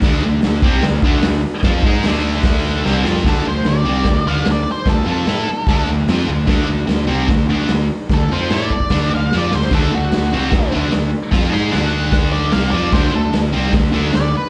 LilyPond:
<<
  \new Staff \with { instrumentName = "Lead electric guitar" } { \time 4/4 \key c \lydian \tempo 4 = 149 r1 | r1 | a'8 c''8 d''4. f''8 d''8 c''8 | a'8 a'2 r4. |
r1 | a'8 c''8 d''4. f''8 d''8 c''8 | a'8 fis'2 r4. | r8 c'''8 fis''4 r8 d''8 f''8 d''8 |
c''8 a'8 r2 d''8 b'8 | }
  \new Staff \with { instrumentName = "Distorted electric guitar" } { \time 4/4 \key c \lydian <d a d'>8 <d a>8 <d a>8 <c g c'>8 <d a>8 <d a d'>8 <d a>8 r8 | <f c' f'>8 <gis ees' gis'>8 <d a d'>2 <c g c'>8 <f c' f'>8 | <d a d'>8 <d a>8 <d a>8 <c g c'>8 <d a>8 <d a d'>8 <d a>8 r8 | <d a>8 <f c' f'>8 <a e' a'>8 r8 <d a d'>8 <d a>8 <f c' f'>8 <d a>8 |
<d a d'>8 <d a>8 <d a>8 <c g c'>8 <d a>8 <d a d'>8 <d a>8 r8 | <d a>8 <f c' f'>8 <a e' a'>8 r8 <d a d'>8 <d a>8 <f c' f'>8 <d a>8 | <d a d'>8 <d a>8 <d a>8 <c g c'>8 <d a>8 <d a d'>8 <d a>8 r8 | <f c' f'>8 <gis ees' gis'>8 <d a d'>2 <c g c'>8 <f c' f'>8 |
<d a d'>8 <d a>8 <d a>8 <c g c'>8 <d a>8 <d a d'>8 <d a>8 r8 | }
  \new Staff \with { instrumentName = "Fingered electric bass" } { \clef bass \time 4/4 \key c \lydian d,8 d,8 d,8 c,8 d,8 d,8 d,8 r8 | f,8 gis,8 d,2 c,8 f,8 | d,8 d,8 d,8 c,8 d,8 d,8 d,8 r8 | d,8 f,8 a,8 r8 d,8 d,8 f,8 d,8 |
d,8 d,8 d,8 c,8 d,8 d,8 d,8 r8 | d,8 f,8 a,8 r8 d,8 d,8 f,8 d,8 | d,8 d,8 d,8 c,8 d,8 d,8 d,8 r8 | f,8 gis,8 d,2 c,8 f,8 |
d,8 d,8 d,8 c,8 d,8 d,8 d,8 r8 | }
  \new DrumStaff \with { instrumentName = "Drums" } \drummode { \time 4/4 <hho bd sn>4 <hho sn>8 bd8 <hho sn>8 bd8 <hho sn>4 | <hho bd sn>8 bd8 <hho sn>4 <hho bd sn>4 sn8 sn16 sn16 | <hho bd sn>4 <hho sn>4 <hho bd sn>4 <hho sn>4 | <hho bd sn>4 <hho sn>4 <hho bd sn>4 <hho sn>4 |
<hho bd sn>4 <hho sn>4 <hho bd sn>4 <hho sn>4 | <hho bd sn>4 <hho sn>8 bd16 bd16 <hho bd sn>4 sn8 sn16 sn16 | <hho bd sn>4 <hho sn>4 <hho bd sn>4 <hho sn>4 | <hho bd sn>4 <hho sn>4 <hho bd sn>4 <hho sn>4 |
<hho bd sn>4 <hho sn>4 <hho bd sn>4 <hho sn>4 | }
>>